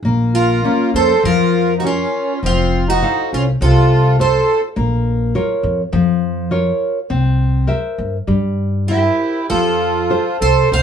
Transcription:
0.03 0.62 A#1 medium
0.03 0.63 A#3 medium
0.34 0.90 F4 medium
0.34 0.91 A#4 medium
0.64 1.12 A#3 soft
0.64 1.13 C#4 medium
0.64 1.12 F4 medium
0.94 1.14 F2 medium
0.94 1.23 A4 medium
0.94 1.23 C5 medium
1.23 2.01 F2 medium
1.23 1.82 F3 medium
1.23 1.74 F4 medium
1.23 1.74 A#4 medium
1.78 1.84 D#4 medium
1.78 1.85 F#4 medium
1.83 2.39 C#4 medium
1.83 2.31 F4 soft
1.83 2.40 F4 medium
1.83 2.32 A#4 soft
1.83 2.32 C#5 soft
2.43 3.01 F1 medium
2.43 3.01 F3 medium
2.43 2.85 C4 medium
2.43 2.89 F4 medium
2.88 3.29 D#4 medium
2.88 3.30 F#4 medium
3.02 3.50 A4 medium
3.02 3.50 C5 medium
3.02 3.50 F5 medium
3.32 3.52 C2 medium
3.32 3.45 C#4 medium
3.32 3.42 F4 medium
3.61 4.36 C2 medium
3.61 4.18 C3 medium
3.61 4.16 F4 medium
3.61 4.16 A4 medium
4.19 4.66 F4 soft
4.19 4.66 A4 soft
4.19 4.61 A4 medium
4.19 4.66 C5 soft
4.19 4.61 C5 medium
4.76 5.33 A#1 medium
4.76 5.33 A#3 medium
5.35 5.81 F4 medium
5.35 5.81 A#4 medium
5.35 5.81 C#5 medium
5.63 5.82 F2 medium
5.93 6.69 F2 loud
5.93 6.49 F3 medium
6.51 6.98 F4 soft
6.51 6.98 A#4 soft
6.51 6.98 C#5 medium
7.10 7.68 C2 medium
7.10 7.67 C4 medium
7.67 8.15 A#4 medium
7.67 8.16 C5 soft
7.67 8.16 E5 medium
7.98 8.18 G2 medium
8.27 9.08 G2 medium
8.27 8.87 G3 medium
8.88 9.46 E4 medium
8.88 9.46 G4 medium
8.88 9.39 A#4 soft
8.88 9.40 C5 soft
8.88 9.40 E5 soft
9.49 10.10 F2 medium
9.49 10.09 F3 medium
9.49 10.37 F4 medium
9.49 10.41 A4 medium
10.10 10.58 F4 medium
10.10 10.59 A4 soft
10.10 10.59 C5 medium
10.41 10.61 C2 medium
10.41 10.69 A4 medium
10.41 10.70 C5 medium
10.71 10.83 C2 medium
10.71 10.83 C3 medium
10.71 10.83 C5 medium
10.71 10.83 F5 medium

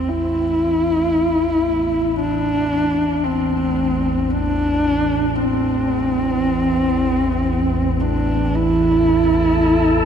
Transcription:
0.00 10.05 A1 medium
0.00 10.05 E2 medium
0.08 2.19 E4 loud
2.19 3.26 D4 loud
3.24 4.32 C4 medium
4.31 5.37 D4 loud
5.36 8.02 C4 medium
8.00 8.57 D4 medium
8.53 10.05 E4 loud
8.53 10.05 A4 medium
8.53 10.05 A5 medium

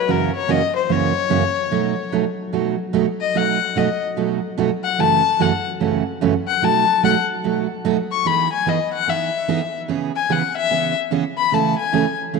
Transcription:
0.00 0.13 B4 medium
0.08 0.30 F#2 medium
0.08 0.30 C#3 medium
0.08 0.30 E3 medium
0.08 0.30 A#3 medium
0.08 0.30 C#4 medium
0.08 0.30 F#4 medium
0.08 0.34 A#4 medium
0.35 0.52 C#5 medium
0.48 0.60 F#2 medium
0.48 0.60 C#3 medium
0.48 0.60 E3 medium
0.48 0.60 A#3 medium
0.48 0.60 C#4 medium
0.48 0.60 F#4 medium
0.48 0.75 D#5 loud
0.76 0.93 C5 medium
0.89 1.11 F#2 medium
0.89 1.11 C#3 medium
0.89 1.11 E3 medium
0.89 1.11 A#3 medium
0.89 1.12 C#4 medium
0.89 1.12 F#4 medium
0.89 2.13 C#5 medium
1.30 1.42 F#2 medium
1.30 1.42 C#3 medium
1.30 1.42 E3 medium
1.30 1.42 A#3 medium
1.30 1.42 C#4 medium
1.30 1.42 F#4 medium
1.71 1.93 B2 medium
1.71 1.93 F#3 medium
1.71 1.93 A3 medium
1.71 1.93 D#4 medium
1.71 1.93 F#4 medium
2.12 2.24 B2 medium
2.12 2.24 F#3 medium
2.12 2.24 A3 medium
2.12 2.24 D#4 medium
2.12 2.24 F#4 medium
2.53 2.75 B2 medium
2.53 2.75 F#3 medium
2.53 2.75 A3 medium
2.53 2.75 D#4 medium
2.53 2.75 F#4 medium
2.93 3.05 B2 medium
2.93 3.05 F#3 medium
2.93 3.05 A3 medium
2.93 3.06 D#4 medium
2.93 3.06 F#4 medium
3.21 3.38 D#5 medium
3.35 3.56 B2 medium
3.35 3.57 F#3 medium
3.35 3.57 A3 medium
3.35 3.57 D#4 medium
3.35 3.57 F#4 medium
3.35 3.79 F#5 medium
3.76 3.87 B2 medium
3.76 3.87 F#3 medium
3.76 3.87 A3 medium
3.76 3.88 D#4 medium
3.76 3.88 F#4 medium
3.76 4.03 D#5 medium
4.17 4.38 B2 medium
4.17 4.39 F#3 medium
4.17 4.39 A3 medium
4.17 4.39 D#4 medium
4.17 4.39 F#4 medium
4.58 4.69 B2 medium
4.58 4.69 F#3 medium
4.58 4.69 A3 medium
4.58 4.69 D#4 medium
4.58 4.70 F#4 medium
4.84 5.01 F#5 medium
4.98 5.20 F#2 medium
4.98 5.20 C#3 medium
4.98 5.20 E3 medium
4.98 5.20 A3 medium
4.98 5.20 C#4 medium
4.98 5.21 F#4 medium
4.98 5.42 A5 loud
5.39 5.51 F#2 medium
5.39 5.51 C#3 medium
5.39 5.51 E3 medium
5.39 5.51 A3 medium
5.39 5.51 C#4 medium
5.39 5.51 F#4 medium
5.39 5.66 F#5 medium
5.80 6.02 F#2 medium
5.80 6.02 C#3 medium
5.80 6.02 E3 medium
5.80 6.02 A3 medium
5.80 6.02 C#4 medium
5.80 6.02 F#4 medium
6.21 6.33 F#2 medium
6.21 6.33 C#3 medium
6.21 6.33 E3 medium
6.21 6.33 A3 medium
6.21 6.33 C#4 medium
6.21 6.33 F#4 medium
6.47 6.65 F#5 loud
6.62 6.84 B2 medium
6.62 6.84 F#3 medium
6.62 6.84 A3 medium
6.62 6.84 D#4 medium
6.62 6.84 F#4 medium
6.62 7.04 A5 loud
7.03 7.14 B2 medium
7.03 7.14 F#3 medium
7.03 7.15 A3 medium
7.03 7.15 D#4 medium
7.03 7.15 F#4 medium
7.03 7.20 F#5 medium
7.44 7.66 B2 medium
7.44 7.66 F#3 medium
7.44 7.66 A3 medium
7.44 7.66 D#4 medium
7.44 7.66 F#4 medium
7.85 7.96 B2 medium
7.85 7.96 F#3 medium
7.85 7.96 A3 medium
7.85 7.96 D#4 medium
7.85 7.97 F#4 medium
8.11 8.29 C#6 medium
8.25 8.47 E3 medium
8.25 8.47 B3 medium
8.25 8.47 D#4 medium
8.25 8.48 G#4 medium
8.25 8.52 B5 medium
8.52 8.70 G#5 medium
8.66 8.78 E3 medium
8.66 8.78 B3 medium
8.66 8.78 D#4 medium
8.66 8.78 G#4 medium
8.66 8.93 D#5 medium
8.93 9.11 F#5 loud
9.07 9.29 E3 medium
9.07 9.29 B3 medium
9.07 9.29 D#4 medium
9.07 9.29 G#4 medium
9.07 9.75 E5 medium
9.48 9.60 E3 medium
9.48 9.60 B3 medium
9.48 9.60 D#4 medium
9.48 9.60 G#4 medium
9.88 10.10 C#3 medium
9.88 10.10 E3 medium
9.88 10.11 B3 medium
9.88 10.11 C#4 medium
9.88 10.11 G#4 medium
10.16 10.34 G#5 medium
10.29 10.41 C#3 medium
10.29 10.41 E3 medium
10.29 10.41 B3 medium
10.29 10.41 C#4 medium
10.29 10.41 G#4 medium
10.29 10.56 F#5 medium
10.57 10.94 E5 loud
10.71 10.92 C#3 soft
10.71 10.92 E3 medium
10.71 10.93 B3 medium
10.71 10.93 C#4 medium
10.71 10.93 G#4 medium
11.11 11.23 C#3 medium
11.11 11.23 E3 medium
11.11 11.23 B3 medium
11.11 11.23 C#4 medium
11.11 11.23 G#4 loud
11.38 11.55 B5 loud
11.52 11.74 C#3 medium
11.52 11.74 E3 medium
11.52 11.74 A3 medium
11.52 11.74 C#4 medium
11.52 11.74 G#4 medium
11.52 11.77 A5 medium
11.78 12.16 G#5 medium
11.93 12.04 C#3 medium
11.93 12.04 E3 medium
11.93 12.05 A3 medium
11.93 12.05 C#4 medium
11.93 12.05 G#4 medium
12.33 12.39 C#3 medium
12.33 12.39 E3 medium
12.33 12.39 A3 medium
12.33 12.39 C#4 medium
12.33 12.39 G#4 medium

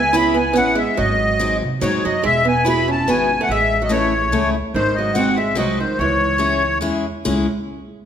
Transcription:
0.00 0.56 C#2 medium
0.00 0.13 B3 medium
0.00 0.16 G#5 loud
0.13 0.36 B3 medium
0.13 0.36 C#4 medium
0.13 0.34 E4 medium
0.13 0.37 E4 medium
0.13 0.37 G#4 medium
0.13 0.37 B5 loud
0.34 0.52 B3 medium
0.34 0.57 G#5 medium
0.53 0.83 A1 medium
0.53 0.75 B3 medium
0.53 0.78 B3 medium
0.53 0.78 C#4 medium
0.53 0.78 E4 soft
0.53 0.78 G#4 medium
0.53 0.79 F#5 loud
0.75 0.95 G#3 medium
0.75 0.98 E5 medium
0.97 1.62 G#1 medium
0.97 1.57 F#3 medium
0.97 1.57 D#5 loud
1.39 1.61 C4 medium
1.39 1.62 D#4 medium
1.39 1.62 F#4 medium
1.39 1.62 G#4 medium
1.62 1.80 C3 medium
1.81 2.02 G#2 medium
1.81 2.02 F#3 medium
1.81 2.04 C4 medium
1.81 2.04 D#4 medium
1.81 2.04 F#4 medium
1.81 2.05 G#4 medium
1.81 2.05 C#5 medium
2.04 2.23 F#2 medium
2.04 2.23 F#3 medium
2.04 2.24 D#5 medium
2.23 3.09 E1 medium
2.23 2.44 G#3 loud
2.23 2.47 E5 loud
2.45 2.64 B3 medium
2.45 2.68 G#5 medium
2.65 2.88 B3 medium
2.65 2.86 E4 medium
2.65 2.88 E4 medium
2.65 2.88 F#4 medium
2.65 2.88 G#4 medium
2.69 2.90 B5 medium
2.88 3.06 C#4 medium
2.88 3.10 A5 medium
3.08 3.36 G#1 loud
3.08 3.30 B3 medium
3.08 3.37 B3 medium
3.08 3.30 E4 soft
3.08 3.30 F#4 medium
3.08 3.30 G#4 medium
3.08 3.41 G#5 medium
3.41 3.49 A3 medium
3.41 3.51 F#5 loud
3.49 4.34 A1 medium
3.49 3.80 G#3 medium
3.49 3.83 E5 loud
3.82 3.90 F#3 medium
3.82 3.92 D#5 medium
3.89 4.51 E3 medium
3.89 4.12 A3 medium
3.89 4.12 C#4 medium
3.89 4.12 E4 medium
3.89 4.12 G#4 medium
3.89 4.50 C#5 medium
4.32 4.60 C#2 loud
4.32 4.54 A3 medium
4.32 4.54 C#4 medium
4.32 4.54 E4 medium
4.32 4.54 G#4 medium
4.74 5.56 G#1 medium
4.74 4.95 D#3 medium
4.74 4.97 C5 loud
4.95 5.15 F#3 medium
4.95 5.16 D#5 medium
5.15 5.37 G#3 medium
5.15 5.37 C4 medium
5.15 5.37 D#4 medium
5.15 5.37 F#4 medium
5.15 5.37 F#5 medium
5.36 5.55 G#3 medium
5.36 5.57 E5 medium
5.55 5.83 C2 loud
5.55 5.78 F#3 medium
5.55 5.78 G#3 medium
5.55 5.78 C4 medium
5.55 5.78 D#4 medium
5.55 5.78 F#4 medium
5.55 5.79 D#5 medium
5.78 5.98 D#3 soft
5.78 5.98 C5 medium
5.98 6.83 C#2 medium
5.98 6.80 E3 medium
5.98 6.78 C#5 medium
6.38 6.61 G#3 medium
6.38 6.62 C#4 medium
6.38 6.62 E4 soft
6.38 6.62 G#4 medium
6.81 7.10 E2 medium
6.81 7.04 G#3 medium
6.81 7.04 C#4 medium
6.81 7.04 E4 medium
6.81 7.04 G#4 medium
7.25 7.46 C#2 medium
7.25 7.46 G#3 medium
7.25 7.46 C#4 medium
7.25 7.46 E4 medium
7.25 7.45 G#4 medium

